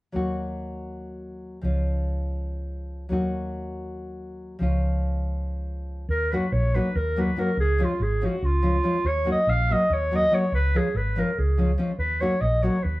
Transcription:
0.12 1.61 D#2 soft
0.12 1.59 F#3 soft
0.12 1.60 A#3 soft
0.12 1.61 D#4 soft
0.12 1.61 F#4 medium
1.61 3.09 C#2 medium
1.61 3.08 F3 soft
1.61 3.09 G#3 soft
1.61 3.10 C#4 soft
1.61 3.10 F4 medium
3.09 4.57 D#2 soft
3.09 4.56 F#3 medium
3.09 4.57 A#3 soft
3.09 4.57 D#4 medium
3.09 4.58 F#4 medium
4.59 6.06 C#2 medium
4.59 6.05 F3 medium
4.59 6.06 G#3 soft
4.59 6.06 C#4 soft
4.59 6.07 F4 medium
6.09 6.35 D#2 medium
6.09 6.33 A#4 medium
6.31 6.44 F#3 medium
6.31 6.44 A#3 soft
6.31 6.45 D#4 medium
6.31 6.45 F#4 medium
6.31 6.54 B4 medium
6.52 6.78 A#1 medium
6.52 6.77 C#5 medium
6.74 6.87 F#3 medium
6.74 6.87 A#3 soft
6.74 6.87 D#4 soft
6.74 6.88 F#4 medium
6.74 6.97 B4 medium
6.95 7.32 D#2 medium
6.95 7.22 A#4 medium
7.16 7.29 F#3 medium
7.16 7.29 A#3 medium
7.16 7.29 D#4 medium
7.16 7.29 F#4 medium
7.16 7.41 B4 medium
7.36 7.48 F#3 medium
7.36 7.49 A#3 soft
7.36 7.49 D#4 medium
7.36 7.49 F#4 medium
7.36 7.58 A#4 medium
7.57 7.83 C#2 medium
7.57 7.86 G#4 medium
7.78 7.91 F3 medium
7.78 7.91 G#3 medium
7.78 7.92 C#4 medium
7.78 7.92 F4 medium
7.84 8.04 F4 medium
8.00 8.26 G#1 medium
8.00 8.27 G#4 medium
8.22 8.34 F3 medium
8.22 8.34 G#3 medium
8.22 8.34 C#4 medium
8.22 8.35 F4 medium
8.22 8.46 F#4 medium
8.42 8.79 C#2 medium
8.42 9.09 F4 medium
8.62 8.75 F3 medium
8.62 8.75 G#3 soft
8.62 8.76 C#4 soft
8.62 8.76 F4 medium
8.83 8.96 F3 medium
8.83 8.96 G#3 medium
8.83 8.96 C#4 medium
8.83 8.96 F4 medium
9.05 9.30 D#2 medium
9.05 9.28 C#5 loud
9.24 9.38 F#3 medium
9.24 9.38 A#3 medium
9.24 9.39 D#4 soft
9.24 9.39 F#4 medium
9.31 9.51 D#5 medium
9.47 9.73 A#1 medium
9.47 9.74 F5 medium
9.69 9.82 F#3 soft
9.69 9.82 A#3 medium
9.69 9.82 D#4 soft
9.69 9.83 F#4 medium
9.69 9.95 D#5 medium
9.90 10.27 D#2 medium
9.90 10.17 C#5 medium
10.11 10.23 F#3 soft
10.11 10.24 A#3 soft
10.11 10.24 D#4 medium
10.11 10.24 F#4 medium
10.16 10.36 D#5 medium
10.30 10.43 F#3 medium
10.30 10.43 A#3 soft
10.30 10.43 D#4 medium
10.30 10.44 F#4 medium
10.30 10.53 C#5 medium
10.52 10.78 C#2 medium
10.52 10.78 B4 medium
10.74 10.86 F3 medium
10.74 10.87 G#3 soft
10.74 10.87 C#4 medium
10.74 10.87 F4 medium
10.74 10.98 G#4 medium
10.94 11.20 G#1 medium
10.94 11.21 B4 medium
11.16 11.29 F3 medium
11.16 11.29 G#3 soft
11.16 11.29 C#4 soft
11.16 11.30 F4 medium
11.16 11.40 A#4 medium
11.38 11.75 C#2 medium
11.38 11.73 G#4 medium
11.58 11.70 F3 medium
11.58 11.71 G#3 soft
11.58 11.71 C#4 soft
11.58 11.71 F4 medium
11.78 11.90 F3 medium
11.78 11.91 G#3 medium
11.78 11.91 C#4 soft
11.78 11.91 F4 medium
11.99 12.24 D#2 medium
11.99 12.22 B4 medium
12.20 12.33 F#3 soft
12.20 12.33 A#3 medium
12.20 12.34 D#4 soft
12.20 12.34 F#4 medium
12.20 12.42 C#5 medium
12.41 12.67 A#1 medium
12.41 12.64 D#5 medium
12.63 12.76 F#3 medium
12.63 12.76 A#3 soft
12.63 12.76 D#4 soft
12.63 12.76 F#4 medium
12.63 12.84 C#5 medium
12.83 13.00 D#2 medium
12.83 13.00 B4 medium

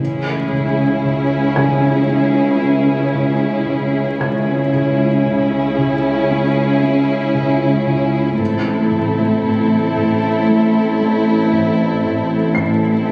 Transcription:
0.00 4.16 C#2 soft
0.00 4.17 C#2 medium
0.00 0.31 C#3 medium
0.00 4.16 C#3 soft
0.00 4.16 C#4 soft
0.00 4.16 E4 soft
0.00 4.16 G#4 soft
0.52 0.84 C#3 soft
1.05 1.36 C#3 soft
1.56 1.89 C#3 medium
1.56 4.68 G#5 soft
1.56 4.19 G#6 soft
2.09 2.41 C#4 soft
2.61 2.93 C#4 soft
3.14 3.46 C#3 medium
3.66 3.98 C#3 soft
4.19 8.36 C#2 soft
4.19 8.36 C#2 medium
4.19 8.36 C#3 soft
4.19 4.52 C#3 medium
4.19 8.36 C#4 soft
4.19 8.36 E4 soft
4.19 8.36 G#4 soft
4.19 7.32 G#6 soft
4.73 5.05 C#3 soft
5.26 5.58 C#3 soft
5.78 6.10 C#3 medium
6.31 6.62 C#4 soft
6.83 7.14 C#4 soft
7.34 7.66 C#3 medium
7.87 8.19 C#3 soft
8.39 12.53 A1 soft
8.39 12.56 A1 medium
8.39 8.70 A2 medium
8.39 12.53 A2 soft
8.39 12.53 C4 soft
8.39 12.54 E4 soft
8.39 12.53 A4 soft
8.91 9.23 A2 soft
9.44 9.75 A2 soft
9.96 10.27 A2 medium
10.49 10.80 A3 soft
11.01 11.32 A3 soft
11.53 11.84 A2 medium
12.05 12.36 A2 soft
12.55 13.12 A1 soft
12.55 13.12 A1 medium
12.55 13.12 A2 soft
12.55 12.88 A2 medium
12.55 13.12 C4 soft
12.55 13.12 E4 soft
12.55 13.12 A4 soft
12.55 13.12 C7 soft

